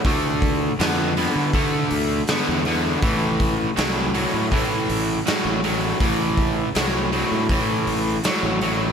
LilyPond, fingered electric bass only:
\new Staff \with { instrumentName = "Fingered electric bass" } { \clef bass \time 4/4 \key a \minor \tempo 4 = 80 d,4 f,8. d8. d,8 r16 e,8. | a,,4 c,8. a,8. a,,8 r16 a,,8. | a,,4 c,8. a,8. a,,8 r16 a,,8. | }